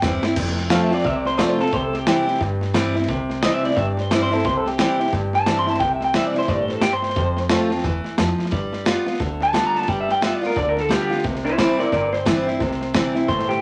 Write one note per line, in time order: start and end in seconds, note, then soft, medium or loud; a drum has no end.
0.00 0.20 E2 medium
0.00 0.34 G2 medium
0.00 0.22 E3 medium
0.00 0.23 G3 medium
0.00 0.23 C4 medium
0.00 0.22 E4 loud
0.00 kick loud
0.00 snare loud
0.00 hi-hat pedal medium
0.23 0.37 C4 soft
0.23 0.36 E4 medium
0.23 snare medium
0.36 0.75 F1 medium
0.36 1.02 F2 medium
0.36 kick loud
0.36 snare soft
0.36 crash loud
0.57 snare soft
0.70 0.90 F3 medium
0.70 0.90 A3 medium
0.70 0.91 C4 loud
0.70 0.89 F4 loud
0.70 0.82 F5 loud
0.70 snare loud
0.70 hi-hat pedal medium
0.82 0.93 E5 medium
0.90 1.05 C4 soft
0.90 1.04 F4 medium
0.90 1.05 D5 medium
0.90 muted upright bass stroke medium
0.90 snare soft
0.98 snare soft
1.04 1.43 C2 medium
1.04 1.70 C3 medium
1.04 1.16 E5 medium
1.04 kick loud
1.04 snare soft
1.16 1.26 D5 medium
1.25 1.38 C5 medium
1.25 snare soft
1.37 1.58 F3 medium
1.37 1.58 A3 medium
1.37 1.58 C4 medium
1.37 1.57 F4 medium
1.37 1.49 D5 loud
1.37 snare loud
1.37 hi-hat pedal loud
1.49 1.60 C5 medium
1.58 1.73 C4 medium
1.58 1.72 F4 medium
1.58 1.73 A4 loud
1.58 muted upright bass stroke medium
1.58 snare soft
1.66 snare soft
1.72 2.11 C2 medium
1.72 2.38 C3 medium
1.72 1.83 C5 medium
1.72 kick loud
1.72 snare soft
1.83 1.96 A4 medium
1.93 2.07 G4 medium
1.93 snare soft
2.07 2.26 E3 loud
2.07 2.27 G3 medium
2.07 2.27 C4 medium
2.07 2.25 E4 loud
2.07 2.41 G4 loud
2.07 snare loud
2.07 hi-hat pedal medium
2.26 2.41 C4 medium
2.26 2.40 E4 medium
2.26 muted upright bass stroke medium
2.26 snare soft
2.34 snare soft
2.41 3.06 G2 loud
2.41 2.79 G2 medium
2.41 kick loud
2.41 snare soft
2.61 snare soft
2.74 2.94 E3 medium
2.74 2.94 G3 medium
2.74 2.95 C4 loud
2.74 2.94 E4 loud
2.74 snare loud
2.74 hi-hat pedal loud
2.95 3.09 C4 medium
2.95 3.08 E4 medium
2.95 muted upright bass stroke medium
2.95 snare soft
3.02 snare soft
3.09 3.47 C2 loud
3.09 3.74 C3 medium
3.09 kick loud
3.09 snare soft
3.30 snare soft
3.42 3.62 E3 medium
3.42 3.62 G3 medium
3.42 3.63 C4 loud
3.42 3.62 E4 medium
3.42 3.53 D#5 loud
3.42 snare loud
3.42 hi-hat pedal medium
3.54 3.65 E5 medium
3.63 3.77 C4 medium
3.63 3.76 E4 medium
3.63 3.76 D5 medium
3.63 muted upright bass stroke medium
3.63 snare soft
3.70 snare soft
3.76 4.15 G2 medium
3.76 4.42 G2 medium
3.76 3.87 E5 medium
3.76 kick loud
3.76 snare soft
3.87 4.00 D5 loud
3.97 4.11 C5 medium
3.97 snare soft
4.11 4.30 E3 medium
4.11 4.31 G3 medium
4.11 4.31 C4 loud
4.11 4.30 E4 medium
4.11 4.22 D5 loud
4.11 snare loud
4.11 hi-hat pedal medium
4.23 4.33 C5 medium
4.31 4.45 C4 medium
4.31 4.44 E4 medium
4.31 4.44 A4 medium
4.31 muted upright bass stroke medium
4.31 snare soft
4.38 snare soft
4.45 4.83 C2 loud
4.45 5.10 C3 medium
4.45 4.57 C5 medium
4.45 kick loud
4.45 snare soft
4.57 4.67 A4 medium
4.66 4.78 G4 medium
4.66 snare soft
4.78 4.98 E3 medium
4.78 4.98 G3 medium
4.78 4.99 C4 medium
4.78 4.98 E4 loud
4.78 5.12 G4 loud
4.78 snare loud
4.78 hi-hat pedal medium
4.99 5.13 C4 soft
4.99 5.12 E4 medium
4.99 muted upright bass stroke medium
4.99 snare soft
5.06 snare soft
5.13 5.78 G2 medium
5.13 5.51 G2 medium
5.13 kick loud
5.13 snare soft
5.33 5.57 A5 loud
5.33 snare soft
5.46 5.66 E3 medium
5.46 5.67 G3 medium
5.46 5.67 C4 medium
5.46 5.65 E4 loud
5.46 snare loud
5.46 hi-hat pedal medium
5.59 5.70 C6 loud
5.67 5.81 C4 soft
5.67 5.80 E4 medium
5.67 5.79 A5 loud
5.67 muted upright bass stroke medium
5.67 snare soft
5.74 snare soft
5.80 6.19 C2 loud
5.80 6.46 C3 medium
5.80 5.93 G5 loud
5.80 kick loud
5.80 snare soft
5.93 6.03 E5 loud
6.01 6.15 G5 medium
6.01 snare soft
6.13 6.34 E3 medium
6.13 6.34 G3 medium
6.13 6.34 C4 medium
6.13 6.33 E4 loud
6.13 6.27 E5 loud
6.13 snare loud
6.13 hi-hat pedal medium
6.27 6.38 D5 loud
6.34 6.49 C4 medium
6.34 6.48 E4 medium
6.34 muted upright bass stroke medium
6.34 snare soft
6.39 6.49 C5 medium
6.39 snare soft
6.48 6.87 G2 medium
6.48 6.81 A2 medium
6.48 6.61 D5 medium
6.48 kick loud
6.48 snare soft
6.61 6.71 C5 medium
6.68 6.82 A4 medium
6.68 snare soft
6.81 7.15 G2 medium
6.81 6.93 G4 loud
6.81 snare loud
6.81 hi-hat pedal medium
6.93 7.59 C5 loud
7.02 muted upright bass stroke medium
7.02 snare soft
7.09 snare soft
7.16 7.54 F2 loud
7.16 7.82 F2 medium
7.16 kick loud
7.16 snare soft
7.37 snare soft
7.49 7.69 F3 medium
7.49 7.70 A3 medium
7.49 7.70 C4 loud
7.49 7.69 F4 loud
7.49 snare loud
7.49 hi-hat pedal medium
7.70 7.84 C4 medium
7.70 7.83 F4 medium
7.70 muted upright bass stroke medium
7.70 snare soft
7.77 snare soft
7.84 8.02 E2 medium
7.84 8.17 E3 medium
7.84 kick loud
7.84 snare soft
8.04 snare soft
8.18 8.36 F2 medium
8.18 8.51 F3 medium
8.18 snare loud
8.18 hi-hat pedal loud
8.39 snare soft
8.45 snare soft
8.51 8.90 G2 loud
8.51 8.84 G3 medium
8.51 kick loud
8.51 snare soft
8.73 snare soft
8.85 9.05 G3 medium
8.85 9.06 B3 loud
8.85 9.05 F4 loud
8.85 snare loud
8.85 hi-hat pedal medium
9.06 9.20 B3 soft
9.06 9.20 F4 medium
9.06 muted upright bass stroke medium
9.06 snare soft
9.13 snare soft
9.20 9.58 D2 medium
9.20 9.85 D3 medium
9.20 kick loud
9.20 snare soft
9.41 9.65 A5 loud
9.41 snare soft
9.53 9.86 G3 loud
9.53 9.87 B3 medium
9.53 9.87 F4 loud
9.53 snare loud
9.53 hi-hat pedal loud
9.67 9.77 A#5 loud
9.75 9.89 A5 loud
9.75 muted upright bass stroke medium
9.75 snare soft
9.81 snare soft
9.88 10.26 G2 medium
9.88 10.20 G3 medium
9.88 10.00 G5 loud
9.88 kick loud
9.88 snare soft
10.00 10.11 E5 medium
10.09 10.23 G5 loud
10.09 snare soft
10.21 10.41 G3 medium
10.21 10.42 B3 medium
10.21 10.40 F4 medium
10.21 10.35 E5 loud
10.21 snare loud
10.21 hi-hat pedal medium
10.35 10.45 D5 loud
10.41 10.56 B3 medium
10.41 10.55 F4 medium
10.41 muted upright bass stroke medium
10.41 snare soft
10.46 10.57 A#4 medium
10.46 snare soft
10.56 10.95 D2 medium
10.56 11.21 D3 medium
10.56 10.68 D5 loud
10.56 kick loud
10.56 snare soft
10.69 10.79 A#4 medium
10.77 10.91 A4 medium
10.77 snare soft
10.89 11.09 G3 medium
10.89 11.09 B3 medium
10.89 11.08 F4 medium
10.89 11.01 G4 loud
10.89 snare loud
10.89 hi-hat pedal medium
11.03 11.24 G4 medium
11.10 11.24 B3 soft
11.10 11.23 F4 medium
11.10 muted upright bass stroke medium
11.10 snare soft
11.18 snare soft
11.24 11.63 C2 medium
11.24 11.90 C3 medium
11.24 kick loud
11.24 snare soft
11.35 snare soft
11.45 11.57 E4 medium
11.45 11.58 C5 medium
11.45 snare soft
11.58 11.78 E3 medium
11.58 11.78 G3 medium
11.58 11.79 C4 medium
11.58 11.77 E4 medium
11.58 11.77 E4 loud
11.58 11.78 C5 medium
11.58 kick medium
11.58 snare loud
11.58 hi-hat pedal medium
11.78 11.93 C4 soft
11.78 11.92 E4 medium
11.78 11.92 A#4 medium
11.78 11.92 D5 loud
11.78 muted upright bass stroke medium
11.78 snare soft
11.92 12.31 G1 medium
11.92 12.58 G2 loud
11.92 12.12 A#4 medium
11.92 12.13 D5 medium
11.92 kick loud
11.92 snare soft
12.13 13.12 C5 medium
12.13 snare soft
12.26 12.46 E3 medium
12.26 12.46 G3 medium
12.26 12.46 C4 loud
12.26 12.45 E4 medium
12.26 kick medium
12.26 snare loud
12.26 hi-hat pedal loud
12.47 12.61 C4 soft
12.47 12.60 E4 medium
12.47 muted upright bass stroke medium
12.47 snare soft
12.60 12.99 C2 medium
12.60 13.26 C3 medium
12.60 kick loud
12.60 snare soft
12.71 snare soft
12.81 snare soft
12.94 13.14 E3 medium
12.94 13.14 G3 medium
12.94 13.14 C4 loud
12.94 13.13 E4 loud
12.94 kick medium
12.94 snare loud
12.94 hi-hat pedal medium
13.14 13.29 C4 medium
13.14 13.28 E4 medium
13.14 muted upright bass stroke medium
13.14 snare soft
13.28 13.62 G1 medium
13.28 13.62 A2 medium
13.28 13.48 C5 medium
13.28 kick loud
13.28 snare soft
13.39 snare soft
13.49 13.62 G4 medium
13.49 snare soft